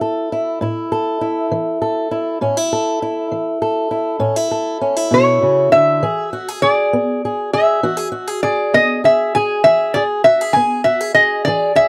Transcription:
0.00 0.24 E3 medium
0.00 0.32 E4 medium
0.00 0.91 A4 medium
0.32 0.62 E4 medium
0.61 1.15 A2 medium
0.61 1.21 E4 medium
0.92 1.80 A4 medium
1.21 2.11 E4 medium
1.51 2.05 E3 medium
1.82 2.38 A4 medium
2.11 2.41 E4 medium
2.41 2.95 A2 medium
2.41 2.57 C#4 medium
2.57 3.01 E4 medium
2.73 3.61 A4 medium
3.02 3.91 E4 medium
3.32 3.86 E3 medium
3.62 4.50 A4 medium
3.91 4.20 E4 medium
4.20 4.75 A2 medium
4.20 4.36 C#4 medium
4.36 4.81 E4 medium
4.51 5.98 A4 medium
4.81 4.96 C#4 medium
4.96 6.02 E4 soft
5.11 5.41 B2 medium
5.11 5.69 C#5 medium
5.42 5.72 C#3 medium
5.72 6.02 D3 medium
5.72 6.65 E5 medium
6.03 6.57 E3 medium
6.03 6.32 G#4 medium
6.33 6.48 F#4 medium
6.48 6.62 G#4 medium
6.62 7.24 G#4 medium
6.62 7.55 D5 medium
6.93 7.47 B3 medium
7.25 7.53 G#4 medium
7.53 7.83 G#4 medium
7.53 8.40 E5 medium
7.83 8.37 E3 medium
7.83 7.97 F#4 medium
7.97 8.11 G#4 medium
8.12 8.28 F#4 medium
8.28 8.42 G#4 medium
8.43 9.03 G#4 medium
8.43 8.74 D5 medium
8.74 9.28 B3 medium
8.74 9.02 D#5 medium
9.04 9.34 G#4 medium
9.04 9.35 E5 medium
9.35 9.61 G#4 medium
9.35 9.65 G#5 medium
9.64 10.19 E3 medium
9.64 9.95 G#4 medium
9.64 9.95 E5 medium
9.94 10.25 G#4 medium
9.94 10.02 D5 medium
10.24 10.41 F#4 medium
10.24 10.55 E5 medium
10.41 10.85 G#4 medium
10.53 11.10 B3 medium
10.53 10.85 G#5 medium
10.84 11.01 F#4 medium
10.84 11.13 E5 medium
11.01 11.14 G#4 medium
11.14 11.45 G#4 medium
11.14 11.44 D#5 medium
11.45 11.88 E3 medium
11.45 11.74 G#4 medium
11.45 11.73 D5 medium
11.75 11.88 G#4 medium
11.75 11.88 E5 medium

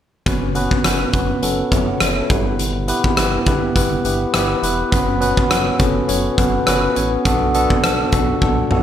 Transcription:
0.26 0.68 F#1 loud
0.26 0.51 B3 medium
0.26 0.52 C#4 medium
0.26 0.52 F#4 medium
0.26 0.52 B4 loud
0.26 kick loud
0.26 closed hi-hat medium
0.55 0.80 B3 loud
0.55 0.81 C#4 medium
0.55 0.81 F#4 medium
0.55 0.81 B4 loud
0.55 closed hi-hat medium
0.71 kick medium
0.84 1.06 F#1 medium
0.84 1.09 B3 medium
0.84 1.10 C#4 medium
0.84 1.10 F#4 medium
0.84 1.10 B4 medium
0.84 cross-stick loud
0.84 closed hi-hat medium
1.13 1.34 F#1 medium
1.13 1.39 B3 medium
1.13 1.39 C#4 medium
1.13 1.39 F#4 medium
1.13 1.39 B4 medium
1.13 kick medium
1.13 closed hi-hat medium
1.42 1.64 F#1 loud
1.42 1.68 B3 medium
1.42 1.68 C#4 medium
1.42 1.68 F#4 medium
1.42 1.68 A4 medium
1.42 closed hi-hat medium
1.72 1.93 F#1 loud
1.72 1.88 C#5 soft
1.72 1.87 E5 medium
1.72 kick medium
1.72 closed hi-hat medium
1.88 2.00 F#5 medium
2.00 2.22 F#1 medium
2.00 2.16 C#5 medium
2.00 2.17 E5 medium
2.00 cross-stick medium
2.00 closed hi-hat medium
2.17 2.45 A4 soft
2.17 2.45 C#5 medium
2.29 2.93 G1 medium
2.29 2.80 B3 medium
2.29 2.80 E4 medium
2.29 2.81 G4 medium
2.29 2.81 B4 medium
2.29 kick loud
2.29 closed hi-hat medium
2.59 closed hi-hat medium
2.88 3.13 B3 loud
2.88 3.14 E4 medium
2.88 3.14 G4 medium
2.88 3.14 B4 loud
2.88 closed hi-hat medium
3.04 kick medium
3.17 3.39 G1 loud
3.17 3.42 B3 medium
3.17 3.43 E4 medium
3.17 3.43 G4 medium
3.17 3.43 B4 medium
3.17 cross-stick loud
3.17 closed hi-hat medium
3.46 3.68 G1 medium
3.46 3.72 B3 medium
3.46 3.72 E4 medium
3.46 3.72 G4 medium
3.46 3.72 B4 medium
3.46 kick medium
3.46 closed hi-hat medium
3.75 3.97 G1 medium
3.75 4.01 B3 medium
3.75 4.01 E4 medium
3.75 4.01 G4 medium
3.75 4.01 B4 medium
3.75 kick medium
3.75 closed hi-hat medium
4.04 4.26 G1 medium
4.04 4.30 B3 medium
4.04 4.30 E4 medium
4.04 4.30 G4 medium
4.04 4.30 B4 medium
4.04 closed hi-hat medium
4.33 4.55 G1 medium
4.33 4.59 B3 loud
4.33 4.59 E4 medium
4.33 4.59 G4 medium
4.33 4.59 B4 loud
4.33 cross-stick medium
4.33 closed hi-hat medium
4.62 4.84 E1 medium
4.62 4.88 B3 medium
4.62 4.88 E4 medium
4.62 4.89 G4 medium
4.62 4.89 B4 medium
4.62 closed hi-hat medium
4.92 5.34 F#1 medium
4.92 5.17 B3 loud
4.92 5.17 C#4 medium
4.92 5.18 F#4 medium
4.92 5.18 B4 loud
4.92 kick loud
4.92 closed hi-hat medium
5.21 5.46 B3 loud
5.21 5.46 C#4 medium
5.21 5.47 F#4 medium
5.21 5.47 B4 loud
5.21 closed hi-hat medium
5.37 kick medium
5.50 5.71 F#1 medium
5.50 5.75 B3 medium
5.50 5.76 C#4 medium
5.50 5.76 F#4 medium
5.50 5.76 C#5 medium
5.50 cross-stick loud
5.50 closed hi-hat medium
5.79 6.01 F#1 medium
5.79 6.05 B3 medium
5.79 6.05 C#4 medium
5.79 6.05 F#4 medium
5.79 6.05 A4 medium
5.79 kick medium
5.79 closed hi-hat medium
6.08 6.30 F#1 medium
6.08 6.34 B3 medium
6.08 6.34 C#4 medium
6.08 6.34 F#4 medium
6.08 6.34 C#5 medium
6.08 closed hi-hat medium
6.37 6.59 F#1 loud
6.37 6.63 B3 medium
6.37 6.63 C#4 medium
6.37 6.63 F#4 medium
6.37 6.63 B4 medium
6.37 kick medium
6.37 closed hi-hat medium
6.66 6.88 F#1 medium
6.66 6.92 B3 medium
6.66 6.92 C#4 medium
6.66 6.92 F#4 loud
6.66 6.92 B4 loud
6.66 cross-stick medium
6.66 closed hi-hat medium
6.96 7.17 A1 medium
6.96 7.21 B3 medium
6.96 7.21 C#4 medium
6.96 7.22 F#4 medium
6.96 7.22 C#5 medium
6.96 closed hi-hat medium
7.25 7.67 B1 loud
7.25 7.50 B3 medium
7.25 7.51 D4 medium
7.25 7.51 F#4 medium
7.25 7.51 A4 loud
7.25 kick medium
7.25 closed hi-hat medium
7.54 7.80 B3 loud
7.54 7.80 D4 medium
7.54 7.80 F#4 medium
7.54 7.80 A4 loud
7.54 closed hi-hat medium
7.70 kick medium
7.83 8.05 B1 medium
7.83 8.09 B3 medium
7.83 8.09 D4 medium
7.83 8.09 F#4 medium
7.83 8.09 A4 medium
7.83 cross-stick loud
7.83 closed hi-hat medium
8.12 8.34 B1 medium
8.12 8.38 B3 medium
8.12 8.38 D4 medium
8.12 8.38 F#4 medium
8.12 8.38 A4 medium
8.12 kick medium
8.12 closed hi-hat medium
8.41 8.63 B1 medium
8.41 8.67 B3 medium
8.41 8.67 D4 medium
8.41 8.67 F#4 medium
8.41 8.67 A4 medium
8.41 kick medium
8.41 high tom soft
8.71 8.83 B1 loud
8.71 8.83 B3 medium
8.71 8.83 D4 medium
8.71 8.83 F#4 medium
8.71 8.83 A4 medium
8.71 mid tom medium

